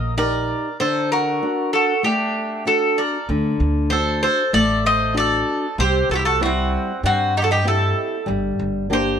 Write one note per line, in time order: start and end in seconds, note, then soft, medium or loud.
0.00 0.51 A#1 medium
0.00 0.16 A#3 medium
0.00 0.14 A#4 medium
0.00 0.13 D#5 loud
0.17 0.67 D#4 medium
0.17 0.67 G4 soft
0.17 0.76 A#4 medium
0.17 0.68 A#4 medium
0.17 0.76 D5 loud
0.80 1.41 D3 medium
0.80 1.10 A4 medium
0.80 1.09 C5 medium
1.12 1.70 F#4 medium
1.12 1.70 A#4 medium
1.42 1.92 D4 soft
1.42 1.92 F#4 soft
1.73 2.04 F#4 medium
1.73 2.04 A4 medium
2.03 2.64 A3 medium
2.03 2.64 D4 medium
2.03 2.63 G4 medium
2.65 3.16 D4 soft
2.65 3.16 F#4 soft
2.65 2.96 F#4 medium
2.65 2.99 A4 medium
2.98 3.28 A#4 medium
2.98 3.27 D5 medium
3.29 3.51 D2 medium
3.29 3.90 D3 medium
3.60 4.26 D2 medium
3.90 4.41 D4 soft
3.90 4.41 F#4 soft
3.90 4.42 A4 medium
3.90 4.21 A4 medium
3.90 4.22 C5 medium
4.23 4.52 A4 medium
4.23 4.52 C5 medium
4.53 5.41 A1 medium
4.53 5.14 A3 medium
4.53 4.83 A4 medium
4.53 4.86 D5 loud
4.86 5.15 C5 medium
4.86 5.17 D#5 loud
5.14 5.65 D4 soft
5.14 5.65 F#4 soft
5.14 5.65 A4 medium
5.14 5.75 D5 loud
5.20 5.76 A4 medium
5.78 6.00 C2 loud
5.78 6.39 C3 medium
5.78 6.09 G4 medium
5.78 6.08 C5 loud
6.10 6.75 C2 medium
6.10 6.18 F#4 medium
6.10 6.15 A4 medium
6.15 6.25 E4 medium
6.15 6.23 G4 medium
6.25 6.41 F#4 medium
6.25 6.40 A4 medium
6.41 6.91 G3 medium
6.41 6.91 C4 soft
6.41 6.91 E4 soft
6.41 7.00 F#4 medium
6.46 7.02 C4 medium
7.03 7.91 G2 medium
7.03 7.64 G3 medium
7.03 7.34 C4 medium
7.03 7.37 F#4 medium
7.37 7.42 D#4 medium
7.37 7.43 G4 medium
7.42 7.48 F#4 medium
7.42 7.50 A4 medium
7.51 7.66 D#4 medium
7.51 7.67 G4 medium
7.65 8.15 C4 medium
7.65 8.15 E4 soft
7.65 8.25 E4 medium
7.65 8.16 G4 medium
7.65 8.25 A4 medium
8.26 8.50 G1 medium
8.26 8.87 G3 medium
8.59 9.20 G1 medium
8.90 9.20 A#3 medium
8.90 9.20 D4 medium
8.90 9.20 G4 soft
8.90 9.20 G4 medium
8.90 9.20 C5 medium